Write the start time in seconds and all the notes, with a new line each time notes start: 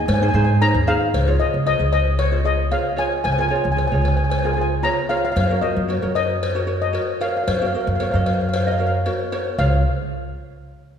0.06 G#2 G#5, cowbell
0.14 G#5
0.22 D#4 G#4 C5 G#5
0.29 G#5
0.34 G#2 D#4 G#4 C5 G#5
0.44 G#5
0.61 D#4 G#4 C5 A#5, cowbell
0.74 D#2
0.87 D#4 G#4 C5 F5
1.14 C#2, cowbell
1.27 F4 G#4 C#5
1.39 F4 G#4 C#5 D#5
1.54 C#2
1.66 F4 G#4 C#5 D#5, cowbell
1.79 C#2 F4 G#4 D#5
1.93 D#5, cowbell
2.19 C#5, cowbell
2.32 F4 G#4 C5
2.44 F4 G#4 D#5
2.71 F4 G#4 C#5 F5, cowbell
2.96 F4 G#4 C#5 G#5, cowbell
3.24 C#2 G#5, cowbell
3.32 G#5
3.38 F4 G#4 A#4 G#5
3.48 F4 G#4 C#5 G#5
3.56 G#5
3.64 C#2 G#5
3.72 G#5
3.76 F4 G#4 C#5 G#5, cowbell
3.87 G#5
3.91 C#2 F4 G#4 C#5 G#5
4.02 G#5, cowbell
4.08 G#5
4.17 G#5
4.24 G#5
4.30 G#5, cowbell
4.39 G#5
4.44 F4 G#4 A#4 G#5
4.53 F4 G#4 G#5
4.58 C5 G#5
4.83 F4 G#4 C#5 A#5, cowbell
5.09 F4 G#4 C#5 F5, cowbell
5.17 F5
5.25 F5
5.32 F5
5.36 F#2, cowbell
5.40 F5
5.47 F#4 A#4 C#5 F5
5.61 F#4 A#4 C5 D#5
5.76 F#2
5.88 F#4 A#4 C#5, cowbell
6.02 F#2 F#4 A#4 C#5
6.15 D#5, cowbell
6.43 cowbell
6.55 F#4 A#4 C#5
6.67 F#4 A#4 C#5
6.82 D#5
6.93 F#4 A#4 C#5, cowbell
7.20 F#4 A#4 C#5 F5, cowbell
7.29 F5
7.37 F5
7.44 F#2 F5
7.48 F5, cowbell
7.59 F#4 A#4 D#5 F5
7.66 F5
7.73 F#4 A#4 D#5 F5
7.81 F5
7.87 F#2 F5
7.95 F5
8.00 F#4 A#4 C#5 F5, cowbell
8.11 F#2 F#4 A#4 D#5 F5
8.18 F5
8.26 F5, cowbell
8.34 F5
8.41 F5
8.49 F5
8.54 F5, cowbell
8.63 D#5 F5
8.67 F#4 A#4
8.72 F5
8.78 F#4 A#4 C#5 F5
8.87 F5
9.06 F#4 A#4 C#5, cowbell
9.32 F#4 A#4 C#5, cowbell
9.58 C#2 F4 G#4 C#5 F5, cowbell